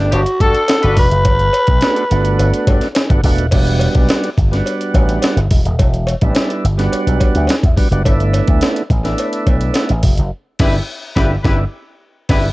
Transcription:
Already playing: A3 B3 D4 G4
0.11 G1 B3 D4 F#4 G4, closed hi-hat, cowbell
0.26 closed hi-hat
0.40 G2 D4 F#4 A4, kick, closed hi-hat
0.55 closed hi-hat
0.68 snare, closed hi-hat, cowbell
0.82 G1 D4 F#4 B4, closed hi-hat
0.97 F1 B4, kick, open hi-hat
1.11 F#1, closed hi-hat
1.25 G1, kick, closed hi-hat, cowbell
1.39 closed hi-hat
1.53 closed hi-hat, cowbell
1.67 B1, kick, closed hi-hat
1.81 A3 B3 D4 F#4, snare, closed hi-hat, cowbell
1.96 closed hi-hat
2.10 G1 A3 B3 D4 F#4, closed hi-hat
2.25 closed hi-hat
2.39 G1, closed hi-hat, cowbell
2.54 closed hi-hat
2.67 G2, kick, closed hi-hat, cowbell
2.81 snare, closed hi-hat
2.95 snare, closed hi-hat, cowbell
3.09 G1 A3 B3 D4 F#4, kick, closed hi-hat
3.24 E1 A3 B3 D4 F#4, kick, open hi-hat
3.38 D#1, closed hi-hat
3.51 E1 G3 B3 D4 F#4, kick, closed hi-hat, crash, cowbell
3.67 closed hi-hat
3.79 closed hi-hat, cowbell
3.95 B1, kick, closed hi-hat
4.09 snare, closed hi-hat, cowbell
4.24 closed hi-hat
4.38 G1, kick, closed hi-hat
4.51 G3 B3 D4 F#4, snare, closed hi-hat
4.66 closed hi-hat, cowbell
4.81 closed hi-hat
4.94 A1, kick, closed hi-hat, cowbell
5.09 closed hi-hat
5.22 snare, closed hi-hat, cowbell
5.36 G1, closed hi-hat
5.51 E1, kick, open hi-hat
5.65 D#1, closed hi-hat
5.79 E1, kick, closed hi-hat, cowbell
5.94 closed hi-hat
6.07 closed hi-hat, cowbell
6.21 A1 G3 B3 D4 E4, kick, closed hi-hat
6.35 snare, closed hi-hat, cowbell
6.50 closed hi-hat
6.64 G1, closed hi-hat
6.78 G3 B3 D4 F#4, snare, closed hi-hat
6.92 closed hi-hat, cowbell
7.07 B1, closed hi-hat
7.20 kick, closed hi-hat, cowbell
7.35 D2, closed hi-hat
7.47 snare, closed hi-hat, cowbell
7.63 E2, kick, closed hi-hat
7.77 G3 B3 D4 F#4, kick, open hi-hat
7.91 F#1 G3 B3 D4 F#4, closed hi-hat
8.05 G1 A3 B3 D4 E4, kick, closed hi-hat, cowbell
8.20 closed hi-hat
8.34 closed hi-hat, cowbell
8.48 D2, kick, closed hi-hat
8.61 snare, closed hi-hat, cowbell
8.76 closed hi-hat
8.90 A1, kick, closed hi-hat
9.03 A3 B3 D4 E4, snare, closed hi-hat
9.18 closed hi-hat, cowbell
9.33 closed hi-hat
9.47 B1, kick, closed hi-hat, cowbell
9.61 closed hi-hat
9.74 snare, closed hi-hat, cowbell
9.89 A1, closed hi-hat
10.03 F1, kick, open hi-hat
10.18 F#1, closed hi-hat
10.59 G1 B3 D4 E4 G4 B4, kick, snare, crash
10.67 E4
11.15 G1 B3 D4 E4 G4 B4, kick, snare
11.43 G1 B3 D4 E4 G4 B4, kick, snare
12.29 G1 B3 D4 E4 G4 B4, kick, snare, crash

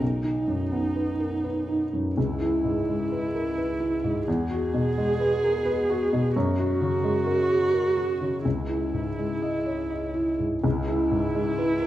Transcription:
0.00 B1 D#4
0.24 D#4
0.48 F#2
0.72 B3
0.96 B4
1.20 A#4
1.44 B4
1.69 D#4
1.93 F#2
2.17 C#2 E4
2.41 E4
2.65 G#2
2.89 G#3
3.12 B4
3.35 A#4
3.57 B4
3.80 E4
4.04 G#2
4.27 E2 G#4
4.51 F#4
4.74 B2
4.98 G#3
5.20 B4
5.44 A#4
5.65 B4
5.90 F#4
6.13 B2
6.35 F#2 F#4
6.59 F#4
6.81 C#3
7.04 G#3
7.26 A#4
7.50 G#4
7.74 A#4
7.97 F#4
8.21 C#3
8.45 C#2 E4
8.69 E4
8.94 G#2
9.18 G#3
9.42 D#5
9.66 C#5
9.90 D#5
10.14 E4
10.39 G#2
10.64 C#2 E4
10.88 E4
11.11 G#2
11.35 G#3
11.58 B4
11.82 A#4

